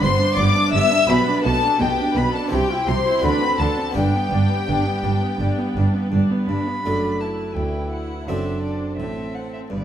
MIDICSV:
0, 0, Header, 1, 8, 480
1, 0, Start_track
1, 0, Key_signature, 1, "major"
1, 0, Tempo, 717703
1, 730, Time_signature, 4, 2, 24, 8
1, 6584, End_track
2, 0, Start_track
2, 0, Title_t, "Violin"
2, 0, Program_c, 0, 40
2, 20, Note_on_c, 0, 84, 103
2, 251, Note_on_c, 0, 86, 112
2, 261, Note_off_c, 0, 84, 0
2, 490, Note_off_c, 0, 86, 0
2, 494, Note_on_c, 0, 88, 117
2, 734, Note_on_c, 0, 83, 106
2, 744, Note_off_c, 0, 88, 0
2, 964, Note_off_c, 0, 83, 0
2, 968, Note_on_c, 0, 81, 103
2, 1214, Note_on_c, 0, 79, 98
2, 1224, Note_off_c, 0, 81, 0
2, 1456, Note_on_c, 0, 83, 89
2, 1466, Note_off_c, 0, 79, 0
2, 1568, Note_off_c, 0, 83, 0
2, 1572, Note_on_c, 0, 81, 82
2, 1681, Note_off_c, 0, 81, 0
2, 1685, Note_on_c, 0, 79, 93
2, 1929, Note_on_c, 0, 84, 88
2, 1939, Note_off_c, 0, 79, 0
2, 2158, Note_off_c, 0, 84, 0
2, 2162, Note_on_c, 0, 83, 99
2, 2407, Note_on_c, 0, 81, 94
2, 2417, Note_off_c, 0, 83, 0
2, 2649, Note_off_c, 0, 81, 0
2, 2652, Note_on_c, 0, 79, 100
2, 4075, Note_off_c, 0, 79, 0
2, 4336, Note_on_c, 0, 83, 84
2, 4819, Note_on_c, 0, 81, 57
2, 4829, Note_off_c, 0, 83, 0
2, 5053, Note_on_c, 0, 79, 54
2, 5063, Note_off_c, 0, 81, 0
2, 5292, Note_off_c, 0, 79, 0
2, 5296, Note_on_c, 0, 78, 53
2, 5539, Note_on_c, 0, 76, 52
2, 5549, Note_off_c, 0, 78, 0
2, 5770, Note_off_c, 0, 76, 0
2, 5774, Note_on_c, 0, 74, 51
2, 5998, Note_off_c, 0, 74, 0
2, 6002, Note_on_c, 0, 76, 57
2, 6251, Note_on_c, 0, 78, 57
2, 6261, Note_off_c, 0, 76, 0
2, 6372, Note_off_c, 0, 78, 0
2, 6377, Note_on_c, 0, 76, 50
2, 6424, Note_off_c, 0, 76, 0
2, 6497, Note_on_c, 0, 74, 58
2, 6584, Note_off_c, 0, 74, 0
2, 6584, End_track
3, 0, Start_track
3, 0, Title_t, "Violin section"
3, 0, Program_c, 1, 48
3, 22, Note_on_c, 1, 84, 124
3, 251, Note_off_c, 1, 84, 0
3, 259, Note_on_c, 1, 86, 119
3, 494, Note_off_c, 1, 86, 0
3, 494, Note_on_c, 1, 88, 122
3, 725, Note_on_c, 1, 83, 117
3, 726, Note_off_c, 1, 88, 0
3, 966, Note_off_c, 1, 83, 0
3, 969, Note_on_c, 1, 81, 123
3, 1203, Note_off_c, 1, 81, 0
3, 1207, Note_on_c, 1, 79, 107
3, 1442, Note_off_c, 1, 79, 0
3, 1449, Note_on_c, 1, 83, 108
3, 1567, Note_off_c, 1, 83, 0
3, 1576, Note_on_c, 1, 81, 104
3, 1688, Note_on_c, 1, 79, 110
3, 1691, Note_off_c, 1, 81, 0
3, 1922, Note_off_c, 1, 79, 0
3, 1925, Note_on_c, 1, 84, 103
3, 2165, Note_off_c, 1, 84, 0
3, 2166, Note_on_c, 1, 83, 115
3, 2407, Note_off_c, 1, 83, 0
3, 2409, Note_on_c, 1, 81, 97
3, 2650, Note_off_c, 1, 81, 0
3, 2652, Note_on_c, 1, 79, 102
3, 4075, Note_off_c, 1, 79, 0
3, 4583, Note_on_c, 1, 74, 36
3, 5036, Note_off_c, 1, 74, 0
3, 5066, Note_on_c, 1, 74, 37
3, 5533, Note_off_c, 1, 74, 0
3, 5536, Note_on_c, 1, 72, 40
3, 6490, Note_off_c, 1, 72, 0
3, 6496, Note_on_c, 1, 71, 43
3, 6584, Note_off_c, 1, 71, 0
3, 6584, End_track
4, 0, Start_track
4, 0, Title_t, "Violin section"
4, 0, Program_c, 2, 48
4, 16, Note_on_c, 2, 72, 105
4, 252, Note_on_c, 2, 74, 102
4, 253, Note_off_c, 2, 72, 0
4, 491, Note_off_c, 2, 74, 0
4, 491, Note_on_c, 2, 76, 111
4, 725, Note_off_c, 2, 76, 0
4, 731, Note_on_c, 2, 71, 104
4, 969, Note_off_c, 2, 71, 0
4, 972, Note_on_c, 2, 69, 91
4, 1206, Note_on_c, 2, 67, 103
4, 1209, Note_off_c, 2, 69, 0
4, 1443, Note_on_c, 2, 71, 94
4, 1446, Note_off_c, 2, 67, 0
4, 1560, Note_on_c, 2, 69, 86
4, 1564, Note_off_c, 2, 71, 0
4, 1683, Note_off_c, 2, 69, 0
4, 1685, Note_on_c, 2, 67, 81
4, 1921, Note_on_c, 2, 72, 96
4, 1925, Note_off_c, 2, 67, 0
4, 2158, Note_off_c, 2, 72, 0
4, 2168, Note_on_c, 2, 71, 96
4, 2404, Note_on_c, 2, 69, 85
4, 2408, Note_off_c, 2, 71, 0
4, 2642, Note_off_c, 2, 69, 0
4, 2645, Note_on_c, 2, 67, 87
4, 4098, Note_off_c, 2, 67, 0
4, 4584, Note_on_c, 2, 71, 37
4, 5514, Note_off_c, 2, 71, 0
4, 5540, Note_on_c, 2, 69, 37
4, 6012, Note_off_c, 2, 69, 0
4, 6020, Note_on_c, 2, 69, 41
4, 6485, Note_off_c, 2, 69, 0
4, 6496, Note_on_c, 2, 71, 37
4, 6584, Note_off_c, 2, 71, 0
4, 6584, End_track
5, 0, Start_track
5, 0, Title_t, "Viola section"
5, 0, Program_c, 3, 48
5, 15, Note_on_c, 3, 59, 67
5, 133, Note_off_c, 3, 59, 0
5, 134, Note_on_c, 3, 62, 70
5, 252, Note_on_c, 3, 59, 81
5, 253, Note_off_c, 3, 62, 0
5, 363, Note_off_c, 3, 59, 0
5, 372, Note_on_c, 3, 62, 76
5, 491, Note_off_c, 3, 62, 0
5, 493, Note_on_c, 3, 59, 77
5, 611, Note_off_c, 3, 59, 0
5, 614, Note_on_c, 3, 62, 69
5, 731, Note_off_c, 3, 62, 0
5, 732, Note_on_c, 3, 59, 82
5, 842, Note_off_c, 3, 59, 0
5, 856, Note_on_c, 3, 62, 72
5, 972, Note_off_c, 3, 62, 0
5, 972, Note_on_c, 3, 59, 80
5, 1089, Note_off_c, 3, 59, 0
5, 1095, Note_on_c, 3, 62, 70
5, 1210, Note_on_c, 3, 59, 68
5, 1211, Note_off_c, 3, 62, 0
5, 1320, Note_off_c, 3, 59, 0
5, 1336, Note_on_c, 3, 62, 64
5, 1451, Note_off_c, 3, 62, 0
5, 1459, Note_on_c, 3, 59, 67
5, 1572, Note_off_c, 3, 59, 0
5, 1572, Note_on_c, 3, 62, 71
5, 1689, Note_off_c, 3, 62, 0
5, 1691, Note_on_c, 3, 67, 75
5, 1800, Note_off_c, 3, 67, 0
5, 1814, Note_on_c, 3, 64, 66
5, 1930, Note_off_c, 3, 64, 0
5, 1932, Note_on_c, 3, 67, 61
5, 2049, Note_off_c, 3, 67, 0
5, 2053, Note_on_c, 3, 64, 69
5, 2168, Note_on_c, 3, 62, 71
5, 2169, Note_off_c, 3, 64, 0
5, 2279, Note_off_c, 3, 62, 0
5, 2291, Note_on_c, 3, 60, 71
5, 2409, Note_off_c, 3, 60, 0
5, 2414, Note_on_c, 3, 62, 64
5, 2531, Note_off_c, 3, 62, 0
5, 2531, Note_on_c, 3, 60, 57
5, 2650, Note_off_c, 3, 60, 0
5, 2651, Note_on_c, 3, 62, 68
5, 2762, Note_off_c, 3, 62, 0
5, 2773, Note_on_c, 3, 59, 61
5, 2892, Note_off_c, 3, 59, 0
5, 2892, Note_on_c, 3, 62, 65
5, 3012, Note_off_c, 3, 62, 0
5, 3012, Note_on_c, 3, 59, 59
5, 3130, Note_on_c, 3, 62, 61
5, 3132, Note_off_c, 3, 59, 0
5, 3243, Note_off_c, 3, 62, 0
5, 3251, Note_on_c, 3, 59, 54
5, 3369, Note_on_c, 3, 62, 56
5, 3373, Note_off_c, 3, 59, 0
5, 3493, Note_off_c, 3, 62, 0
5, 3493, Note_on_c, 3, 59, 62
5, 3614, Note_on_c, 3, 62, 65
5, 3615, Note_off_c, 3, 59, 0
5, 3728, Note_off_c, 3, 62, 0
5, 3733, Note_on_c, 3, 59, 61
5, 3849, Note_on_c, 3, 62, 58
5, 3856, Note_off_c, 3, 59, 0
5, 3975, Note_off_c, 3, 62, 0
5, 3975, Note_on_c, 3, 59, 62
5, 4093, Note_on_c, 3, 62, 62
5, 4098, Note_off_c, 3, 59, 0
5, 4209, Note_off_c, 3, 62, 0
5, 4218, Note_on_c, 3, 59, 59
5, 4338, Note_on_c, 3, 62, 59
5, 4341, Note_off_c, 3, 59, 0
5, 4461, Note_off_c, 3, 62, 0
5, 4464, Note_on_c, 3, 59, 58
5, 4579, Note_on_c, 3, 62, 42
5, 4584, Note_off_c, 3, 59, 0
5, 4805, Note_off_c, 3, 62, 0
5, 4823, Note_on_c, 3, 64, 42
5, 5051, Note_off_c, 3, 64, 0
5, 5059, Note_on_c, 3, 64, 36
5, 5529, Note_off_c, 3, 64, 0
5, 5542, Note_on_c, 3, 62, 39
5, 6015, Note_on_c, 3, 60, 42
5, 6017, Note_off_c, 3, 62, 0
5, 6492, Note_off_c, 3, 60, 0
5, 6495, Note_on_c, 3, 59, 41
5, 6584, Note_off_c, 3, 59, 0
5, 6584, End_track
6, 0, Start_track
6, 0, Title_t, "Harpsichord"
6, 0, Program_c, 4, 6
6, 0, Note_on_c, 4, 59, 66
6, 0, Note_on_c, 4, 62, 72
6, 0, Note_on_c, 4, 67, 72
6, 15, Note_on_c, 4, 43, 79
6, 229, Note_off_c, 4, 43, 0
6, 253, Note_on_c, 4, 43, 69
6, 468, Note_off_c, 4, 43, 0
6, 495, Note_on_c, 4, 43, 68
6, 688, Note_off_c, 4, 59, 0
6, 691, Note_off_c, 4, 62, 0
6, 699, Note_off_c, 4, 67, 0
6, 699, Note_on_c, 4, 62, 66
6, 708, Note_off_c, 4, 43, 0
6, 710, Note_on_c, 4, 67, 68
6, 728, Note_on_c, 4, 47, 77
6, 943, Note_off_c, 4, 47, 0
6, 964, Note_on_c, 4, 47, 70
6, 1181, Note_off_c, 4, 47, 0
6, 1204, Note_on_c, 4, 47, 75
6, 1421, Note_off_c, 4, 47, 0
6, 1445, Note_on_c, 4, 47, 70
6, 1644, Note_off_c, 4, 62, 0
6, 1649, Note_off_c, 4, 67, 0
6, 1655, Note_on_c, 4, 60, 61
6, 1661, Note_off_c, 4, 47, 0
6, 1662, Note_on_c, 4, 64, 63
6, 1673, Note_on_c, 4, 67, 62
6, 1685, Note_on_c, 4, 48, 74
6, 1901, Note_off_c, 4, 48, 0
6, 1925, Note_on_c, 4, 48, 64
6, 2121, Note_off_c, 4, 60, 0
6, 2129, Note_on_c, 4, 60, 54
6, 2139, Note_off_c, 4, 64, 0
6, 2139, Note_on_c, 4, 62, 61
6, 2141, Note_off_c, 4, 48, 0
6, 2145, Note_off_c, 4, 67, 0
6, 2149, Note_on_c, 4, 66, 53
6, 2159, Note_on_c, 4, 50, 63
6, 2379, Note_off_c, 4, 50, 0
6, 2408, Note_on_c, 4, 50, 59
6, 2614, Note_off_c, 4, 62, 0
6, 2615, Note_off_c, 4, 60, 0
6, 2615, Note_on_c, 4, 59, 57
6, 2622, Note_on_c, 4, 62, 61
6, 2625, Note_off_c, 4, 50, 0
6, 2625, Note_off_c, 4, 66, 0
6, 2635, Note_on_c, 4, 67, 60
6, 2643, Note_on_c, 4, 43, 62
6, 2863, Note_off_c, 4, 43, 0
6, 2883, Note_on_c, 4, 43, 55
6, 3104, Note_off_c, 4, 43, 0
6, 3125, Note_on_c, 4, 43, 63
6, 3346, Note_off_c, 4, 43, 0
6, 3376, Note_on_c, 4, 43, 61
6, 3593, Note_off_c, 4, 43, 0
6, 3617, Note_on_c, 4, 43, 63
6, 3834, Note_off_c, 4, 43, 0
6, 3860, Note_on_c, 4, 43, 65
6, 4077, Note_off_c, 4, 43, 0
6, 4093, Note_on_c, 4, 43, 56
6, 4314, Note_off_c, 4, 43, 0
6, 4340, Note_on_c, 4, 43, 53
6, 4540, Note_off_c, 4, 59, 0
6, 4544, Note_off_c, 4, 62, 0
6, 4550, Note_off_c, 4, 67, 0
6, 4558, Note_off_c, 4, 43, 0
6, 4585, Note_on_c, 4, 42, 32
6, 4585, Note_on_c, 4, 57, 25
6, 4587, Note_on_c, 4, 62, 25
6, 4591, Note_on_c, 4, 69, 26
6, 5037, Note_off_c, 4, 42, 0
6, 5061, Note_on_c, 4, 38, 34
6, 5513, Note_off_c, 4, 38, 0
6, 5515, Note_off_c, 4, 57, 0
6, 5516, Note_off_c, 4, 62, 0
6, 5518, Note_off_c, 4, 69, 0
6, 5540, Note_on_c, 4, 42, 37
6, 5541, Note_on_c, 4, 60, 30
6, 5545, Note_on_c, 4, 62, 29
6, 5547, Note_on_c, 4, 69, 28
6, 5990, Note_off_c, 4, 42, 0
6, 6018, Note_on_c, 4, 45, 37
6, 6466, Note_off_c, 4, 45, 0
6, 6466, Note_off_c, 4, 60, 0
6, 6468, Note_off_c, 4, 62, 0
6, 6469, Note_off_c, 4, 69, 0
6, 6488, Note_on_c, 4, 43, 35
6, 6584, Note_off_c, 4, 43, 0
6, 6584, End_track
7, 0, Start_track
7, 0, Title_t, "Cello section"
7, 0, Program_c, 5, 48
7, 16, Note_on_c, 5, 43, 89
7, 69, Note_off_c, 5, 43, 0
7, 251, Note_on_c, 5, 43, 89
7, 304, Note_off_c, 5, 43, 0
7, 490, Note_on_c, 5, 43, 87
7, 543, Note_off_c, 5, 43, 0
7, 729, Note_on_c, 5, 47, 96
7, 782, Note_off_c, 5, 47, 0
7, 966, Note_on_c, 5, 47, 81
7, 1020, Note_off_c, 5, 47, 0
7, 1201, Note_on_c, 5, 47, 84
7, 1254, Note_off_c, 5, 47, 0
7, 1442, Note_on_c, 5, 47, 83
7, 1496, Note_off_c, 5, 47, 0
7, 1677, Note_on_c, 5, 48, 87
7, 1731, Note_off_c, 5, 48, 0
7, 1918, Note_on_c, 5, 48, 83
7, 1971, Note_off_c, 5, 48, 0
7, 2159, Note_on_c, 5, 50, 76
7, 2213, Note_off_c, 5, 50, 0
7, 2401, Note_on_c, 5, 50, 72
7, 2454, Note_off_c, 5, 50, 0
7, 2643, Note_on_c, 5, 43, 82
7, 2696, Note_off_c, 5, 43, 0
7, 2886, Note_on_c, 5, 43, 73
7, 2940, Note_off_c, 5, 43, 0
7, 3128, Note_on_c, 5, 43, 75
7, 3182, Note_off_c, 5, 43, 0
7, 3368, Note_on_c, 5, 43, 73
7, 3422, Note_off_c, 5, 43, 0
7, 3612, Note_on_c, 5, 43, 76
7, 3666, Note_off_c, 5, 43, 0
7, 3857, Note_on_c, 5, 43, 73
7, 3911, Note_off_c, 5, 43, 0
7, 4098, Note_on_c, 5, 43, 75
7, 4151, Note_off_c, 5, 43, 0
7, 4338, Note_on_c, 5, 43, 72
7, 4392, Note_off_c, 5, 43, 0
7, 4584, Note_on_c, 5, 42, 49
7, 5037, Note_off_c, 5, 42, 0
7, 5060, Note_on_c, 5, 38, 43
7, 5512, Note_off_c, 5, 38, 0
7, 5536, Note_on_c, 5, 42, 46
7, 5987, Note_off_c, 5, 42, 0
7, 6013, Note_on_c, 5, 45, 45
7, 6464, Note_off_c, 5, 45, 0
7, 6493, Note_on_c, 5, 43, 54
7, 6584, Note_off_c, 5, 43, 0
7, 6584, End_track
8, 0, Start_track
8, 0, Title_t, "Double bass section"
8, 0, Program_c, 6, 48
8, 19, Note_on_c, 6, 31, 94
8, 72, Note_off_c, 6, 31, 0
8, 257, Note_on_c, 6, 31, 88
8, 310, Note_off_c, 6, 31, 0
8, 494, Note_on_c, 6, 31, 82
8, 547, Note_off_c, 6, 31, 0
8, 737, Note_on_c, 6, 35, 97
8, 790, Note_off_c, 6, 35, 0
8, 972, Note_on_c, 6, 35, 87
8, 1025, Note_off_c, 6, 35, 0
8, 1211, Note_on_c, 6, 35, 87
8, 1265, Note_off_c, 6, 35, 0
8, 1446, Note_on_c, 6, 35, 82
8, 1500, Note_off_c, 6, 35, 0
8, 1688, Note_on_c, 6, 36, 89
8, 1741, Note_off_c, 6, 36, 0
8, 1926, Note_on_c, 6, 36, 80
8, 1980, Note_off_c, 6, 36, 0
8, 2165, Note_on_c, 6, 38, 78
8, 2218, Note_off_c, 6, 38, 0
8, 2408, Note_on_c, 6, 38, 75
8, 2462, Note_off_c, 6, 38, 0
8, 2648, Note_on_c, 6, 31, 82
8, 2702, Note_off_c, 6, 31, 0
8, 2892, Note_on_c, 6, 31, 78
8, 2946, Note_off_c, 6, 31, 0
8, 3134, Note_on_c, 6, 31, 79
8, 3188, Note_off_c, 6, 31, 0
8, 3371, Note_on_c, 6, 31, 74
8, 3425, Note_off_c, 6, 31, 0
8, 3614, Note_on_c, 6, 31, 76
8, 3668, Note_off_c, 6, 31, 0
8, 3858, Note_on_c, 6, 31, 71
8, 3912, Note_off_c, 6, 31, 0
8, 4099, Note_on_c, 6, 31, 71
8, 4152, Note_off_c, 6, 31, 0
8, 4340, Note_on_c, 6, 31, 68
8, 4393, Note_off_c, 6, 31, 0
8, 4581, Note_on_c, 6, 30, 47
8, 5035, Note_off_c, 6, 30, 0
8, 5063, Note_on_c, 6, 38, 48
8, 5514, Note_off_c, 6, 38, 0
8, 5542, Note_on_c, 6, 30, 49
8, 5990, Note_off_c, 6, 30, 0
8, 6014, Note_on_c, 6, 33, 45
8, 6464, Note_off_c, 6, 33, 0
8, 6491, Note_on_c, 6, 31, 54
8, 6584, Note_off_c, 6, 31, 0
8, 6584, End_track
0, 0, End_of_file